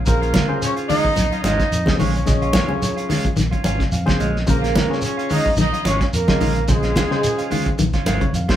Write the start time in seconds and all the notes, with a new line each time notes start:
0.06 A#1 A#3 C#4 F4 G#4 A#4 C5, muted clean electric guitar stroke, kick, closed hi-hat, shekere
0.21 C#4 F4, closed hi-hat
0.34 G#3 C#4 F4, kick, snare, closed hi-hat, high conga, low conga, shekere
0.49 C#3 C#4 F4 G#4 C5
0.62 C#4 C#5, closed hi-hat, shekere
0.76 C#4 F4, closed hi-hat
0.88 D#3 G#3 C#4 D#4 F4 D#5, open hi-hat, low conga, shekere
1.05 kick
1.16 A#1, muted clean electric guitar stroke, snare, closed hi-hat, high conga, shekere
1.32 C#4 F4, closed hi-hat
1.43 G#1 G#3 C#4 D#4 F4 D#5, snare, closed hi-hat, high conga, shekere
1.58 muted clean electric guitar stroke, kick, snare, closed hi-hat
1.71 F2, closed hi-hat, shekere
1.86 C#4 F4 G#4 C5, muted fingered electric bass stroke, muted clean electric guitar stroke, kick, snare, closed hi-hat, high conga
1.98 A#1 D#3 G#3 C#4 F4 C#5, open hi-hat, low conga, shekere
2.15 C#4 C#5, closed hi-hat
2.26 A#1 C#3 C#4 F4 G#4 D#5, kick, snare, closed hi-hat, low conga, shekere
2.42 C#4 F4, closed hi-hat
2.53 G#3 C#4 F4, kick, snare, closed hi-hat, high conga, shekere
2.68 C#3 C#4 F4 G#4 C#5, high conga
2.82 closed hi-hat, high conga, shekere
2.97 C#4 F4, closed hi-hat
3.09 D#3 G#3 C#4 F4, snare, open hi-hat, low conga, shekere
3.25 kick, closed hi-hat
3.36 A#1 D#3, snare, closed hi-hat, high conga, shekere
3.51 C#4 F4, kick, closed hi-hat
3.64 G#1 C#4 F4 G#5, closed hi-hat, high conga, shekere
3.79 C#3, kick, snare, closed hi-hat
3.92 F2 F5, closed hi-hat, shekere
4.06 C#4 F4 G#4 C5, kick, snare, closed hi-hat, high conga
4.20 A#1 G#3 C#4 D#5, closed hi-hat, low conga, shekere
4.36 snare
4.46 A#1 C#3 A#3 C#4 F4 G#4 A#4 C5, kick, closed hi-hat, low conga, shekere
4.62 C#4 F4, snare, closed hi-hat
4.75 G#3 C#4, kick, snare, closed hi-hat, high conga, shekere
4.90 C#3 C#4 F4 G#4 C#5, snare
5.02 C#4 C#5, closed hi-hat, shekere
5.17 C#4 F4, closed hi-hat
5.30 D#3 G#3 C#4 D#4 F4 D#5, open hi-hat, low conga, shekere
5.46 kick
5.57 A#1 D#3 D#4 D#5, snare, closed hi-hat, high conga, shekere
5.72 C#4 F4, closed hi-hat
5.85 G#1 G#3 C#4 F4 C#5, snare, closed hi-hat, high conga, shekere
6.00 C#4 C#5, kick, snare, closed hi-hat
6.13 F2 A#3 A#4, closed hi-hat, shekere
6.27 C#4 F4 G#4 D#5, kick, snare, closed hi-hat, high conga
6.40 A#1 D#3 G#3 C#4 F4, open hi-hat, low conga, shekere
6.56 closed hi-hat
6.68 A#1 C#3 G#3 C#4 F4 G#4 C5, kick, snare, closed hi-hat, low conga, shekere
6.83 C#4 F4, snare, closed hi-hat
6.96 G#3 C#4 F4, kick, snare, closed hi-hat, high conga, low conga, shekere
7.11 C#3 C#4 F4 G#4 C5, snare
7.23 closed hi-hat, shekere
7.38 C#4 F4, closed hi-hat
7.50 D#3 G#3 C#4 F4, open hi-hat, low conga, shekere
7.66 kick, closed hi-hat
7.78 A#1 D#3, closed hi-hat, high conga, shekere
7.93 C#4 F4, kick, snare, closed hi-hat
8.05 G#1 G#3 C#4 F4 C5, snare, closed hi-hat, high conga, shekere
8.21 C#3 C#5, kick, closed hi-hat
8.33 F2 F5, closed hi-hat, shekere
8.48 C#4 F4 G#4 C5, kick, snare, closed hi-hat, high conga